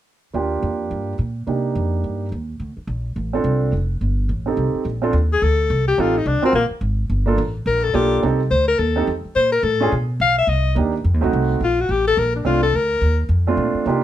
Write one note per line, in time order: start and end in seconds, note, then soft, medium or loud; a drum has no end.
0.34 0.61 D#2 medium
0.34 1.12 A#3 soft
0.34 1.12 D4 soft
0.34 1.12 F4 soft
0.34 1.13 G4 medium
0.63 0.90 F2 medium
0.91 1.18 G2 medium
1.19 1.46 A#2 medium
1.47 1.74 C3 medium
1.47 2.25 A#3 soft
1.47 2.25 D4 soft
1.47 2.25 D#4 soft
1.47 2.26 G4 soft
1.75 2.03 F2 medium
2.04 2.31 G2 medium
2.32 2.59 D#2 medium
2.60 2.76 D2 medium
2.77 muted upright bass stroke soft
2.87 3.15 A#1 medium
3.16 3.43 A1 medium
3.33 3.70 C4 medium
3.33 3.71 D4 medium
3.33 3.71 F4 soft
3.33 3.71 A4 medium
3.44 3.72 C2 medium
3.73 4.00 F1 medium
4.01 4.28 G1 medium
4.29 4.56 A1 medium
4.46 4.83 C4 soft
4.46 4.84 D#4 soft
4.46 4.84 G4 soft
4.46 4.84 A4 medium
4.57 4.73 C2 medium
4.74 muted upright bass stroke soft
4.85 5.13 A#1 medium
5.02 5.12 C4 medium
5.02 5.13 D4 medium
5.02 5.13 F4 medium
5.02 5.13 A4 medium
5.13 5.41 D#2 medium
5.33 5.44 G#4 medium
5.42 5.69 D2 medium
5.42 5.88 A4 medium
5.70 5.97 C2 medium
5.88 6.02 G4 medium
5.98 6.25 A1 medium
5.98 6.13 C4 medium
5.98 6.14 D#4 medium
5.98 6.19 F4 medium
5.98 6.14 G4 soft
5.98 6.14 A4 medium
6.18 6.29 D#4 medium
6.26 6.42 C2 medium
6.26 6.44 D4 medium
6.42 6.53 C4 medium
6.42 6.55 C4 medium
6.42 6.53 F4 medium
6.42 6.53 F#4 medium
6.42 6.54 A#4 medium
6.42 muted upright bass stroke soft
6.53 6.70 A#1 medium
6.53 6.65 A#3 medium
6.70 muted upright bass stroke soft
6.81 7.09 G#1 medium
7.10 7.37 G1 medium
7.26 7.37 A#3 medium
7.26 7.37 D4 medium
7.26 7.38 F4 medium
7.26 7.38 A4 medium
7.38 7.65 A1 medium
7.66 7.93 A#1 medium
7.66 7.85 A#4 medium
7.84 7.96 A4 medium
7.93 8.22 B1 medium
7.93 8.22 A#3 medium
7.93 8.23 D4 soft
7.93 8.23 F4 medium
7.93 8.23 G4 medium
7.93 8.23 A4 medium
8.23 8.50 C2 medium
8.23 8.38 C4 medium
8.23 8.39 D#4 soft
8.23 8.39 G4 soft
8.23 8.39 A4 medium
8.51 8.78 D2 medium
8.51 8.67 C5 medium
8.68 8.80 A#4 medium
8.79 9.07 D#2 medium
8.79 9.07 A4 medium
8.96 9.06 C4 medium
8.96 9.06 D#4 medium
8.96 9.07 G4 soft
8.96 9.07 A4 medium
9.07 9.23 F2 medium
9.25 muted upright bass stroke soft
9.36 9.62 A#2 medium
9.36 9.52 C5 medium
9.52 9.65 A#4 medium
9.63 9.91 A2 medium
9.63 9.92 A4 medium
9.80 9.91 C#4 medium
9.80 9.91 D4 medium
9.80 9.91 F4 medium
9.80 9.92 G#4 medium
9.92 10.19 B2 medium
10.20 10.47 B1 medium
10.20 10.37 F5 medium
10.38 10.51 E5 medium
10.47 10.75 C2 medium
10.47 10.77 D#5 medium
10.75 11.04 D#2 medium
10.75 10.91 A#3 medium
10.75 10.92 D4 soft
10.75 10.92 D#4 soft
10.75 10.92 G4 soft
11.04 11.14 F2 medium
11.14 11.23 D#2 medium
11.21 11.32 C2 medium
11.21 11.58 A3 medium
11.21 11.59 C4 medium
11.21 11.59 D#4 medium
11.21 11.59 F#4 medium
11.33 11.60 C2 medium
11.61 11.88 A#1 medium
11.61 11.82 F4 medium
11.81 11.93 F#4 medium
11.89 12.16 A1 medium
11.89 12.07 G4 medium
12.07 12.20 A4 medium
12.17 12.45 A#1 medium
12.17 12.35 A#4 medium
12.36 12.48 D4 soft
12.45 12.73 C2 medium
12.45 12.60 A3 medium
12.45 12.61 C4 medium
12.45 12.61 D4 medium
12.45 12.62 F4 medium
12.45 12.61 F4 medium
12.63 12.77 A4 medium
12.73 13.01 D2 medium
12.73 13.20 A#4 medium
13.01 13.28 D#2 medium
13.29 13.57 F2 medium
13.47 13.84 A3 medium
13.47 13.84 C4 medium
13.47 13.85 D4 medium
13.47 13.85 F4 medium
13.57 13.73 A#2 medium
13.74 muted upright bass stroke soft
13.86 14.04 C3 medium
13.86 14.01 A#3 soft
13.86 14.02 D4 medium
13.86 14.02 D#4 soft
13.86 14.02 F4 medium
13.86 14.02 G4 medium